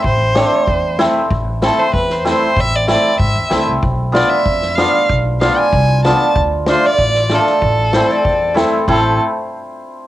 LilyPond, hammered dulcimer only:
\new Staff \with { instrumentName = "Hammered dulcimer" } { \time 2/4 \key a \minor \tempo 4 = 95 r8 <a c' d'>16 r8. <a c' e'>16 r16 | r8 <a c' e'>16 r8. <a c' e'>16 r16 | r8 <a c' e'>16 r8. <a c' e'>16 r16 | r8 <b d' f'>16 r8. <b d' f'>16 r16 |
r8 <b d' f'>16 r8. <b d' f'>16 r16 | r8 <a d' f'>16 r8. <a d' f'>16 r16 | r8 <a c' e'>16 r8. <a c' e'>16 r16 | <a c' e'>8 r4. | }